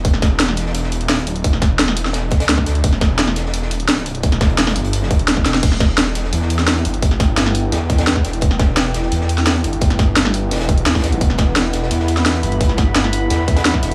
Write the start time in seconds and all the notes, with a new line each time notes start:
0.05 E1, kick, closed hi-hat
0.14 snare
0.22 kick, snare, closed hi-hat
0.39 snare, closed hi-hat
0.48 snare
0.57 snare, closed hi-hat
0.66 snare
0.75 closed hi-hat
0.83 snare
0.92 closed hi-hat
1.01 D#1, closed hi-hat
1.09 snare, closed hi-hat
1.18 closed hi-hat
1.27 D1, closed hi-hat
1.36 closed hi-hat
1.44 E1, kick, closed hi-hat
1.53 snare
1.62 kick, snare, closed hi-hat
1.79 E1, snare, closed hi-hat
1.88 snare
1.97 closed hi-hat, open hi-hat
2.05 snare
2.13 snare, closed hi-hat
2.31 kick, snare, closed hi-hat
2.40 snare, closed hi-hat
2.49 D2, snare, closed hi-hat
2.58 kick, snare
2.66 snare, closed hi-hat
2.75 closed hi-hat
2.84 E1, kick, closed hi-hat
2.93 snare
3.01 kick, snare, closed hi-hat
3.18 snare, closed hi-hat
3.28 snare
3.36 snare, closed hi-hat
3.46 snare
3.54 closed hi-hat
3.62 snare
3.71 closed hi-hat
3.80 closed hi-hat
3.84 D1
3.88 snare, closed hi-hat
3.97 closed hi-hat
4.06 C1, closed hi-hat
4.15 closed hi-hat
4.23 E1, kick, closed hi-hat
4.32 snare, closed hi-hat
4.41 kick, snare, closed hi-hat
4.49 closed hi-hat
4.58 E1, snare, closed hi-hat
4.67 snare, closed hi-hat
4.76 G1, closed hi-hat, open hi-hat
4.84 closed hi-hat
4.93 closed hi-hat
5.02 snare
5.11 E1, kick, closed hi-hat
5.19 closed hi-hat
5.28 snare, closed hi-hat
5.37 kick, snare
5.45 E1, snare, closed hi-hat
5.54 snare, closed hi-hat
5.63 E1 E4 B4 F#5 G5, kick, closed hi-hat, crash
5.72 snare
5.80 kick, snare, closed hi-hat
5.98 snare, closed hi-hat
6.15 E1, snare, closed hi-hat
6.24 snare
6.33 E2, closed hi-hat
6.42 snare
6.50 closed hi-hat
6.59 snare, closed hi-hat
6.67 snare, closed hi-hat
6.77 closed hi-hat
6.85 G1, closed hi-hat
6.94 closed hi-hat
7.03 kick, closed hi-hat
7.11 snare
7.20 kick, snare, closed hi-hat
7.37 snare, closed hi-hat
7.46 snare
7.54 closed hi-hat, open hi-hat
7.72 E2, snare, closed hi-hat
7.90 kick, snare, closed hi-hat
7.98 snare, closed hi-hat
8.07 snare, closed hi-hat
8.16 kick, snare
8.25 E1, snare, closed hi-hat
8.33 closed hi-hat
8.41 E1, kick, closed hi-hat
8.51 snare
8.59 kick, snare, closed hi-hat
8.77 snare, closed hi-hat
8.94 E1, snare, closed hi-hat
9.03 snare
9.12 E2, closed hi-hat
9.21 snare
9.29 closed hi-hat
9.38 snare, closed hi-hat
9.46 snare, closed hi-hat
9.56 closed hi-hat
9.64 G1, closed hi-hat
9.73 closed hi-hat
9.81 kick, closed hi-hat
9.90 snare, closed hi-hat
9.99 kick, snare, closed hi-hat
10.16 snare, closed hi-hat
10.25 snare
10.34 closed hi-hat, open hi-hat
10.51 E1, snare, closed hi-hat
10.56 snare, closed hi-hat
10.60 snare, closed hi-hat
10.69 kick, closed hi-hat
10.78 closed hi-hat
10.86 E2, snare, closed hi-hat
10.95 kick, snare, closed hi-hat
10.99 snare, closed hi-hat
11.04 snare, closed hi-hat
11.12 closed hi-hat
11.21 E1 B5, kick, closed hi-hat
11.30 snare
11.38 kick, snare, closed hi-hat
11.56 snare, closed hi-hat
11.73 E1, snare, closed hi-hat
11.82 snare
11.91 E2, closed hi-hat
12.00 snare
12.08 closed hi-hat
12.17 snare, closed hi-hat
12.26 snare, closed hi-hat
12.35 closed hi-hat
12.43 G1, closed hi-hat
12.52 closed hi-hat
12.61 kick, closed hi-hat
12.69 snare
12.78 kick, snare, closed hi-hat
12.95 snare, closed hi-hat
13.04 snare
13.13 closed hi-hat, open hi-hat
13.30 E2, snare, closed hi-hat
13.48 kick, snare, closed hi-hat
13.56 snare, closed hi-hat
13.65 snare, closed hi-hat
13.74 kick, snare
13.83 E1, snare, closed hi-hat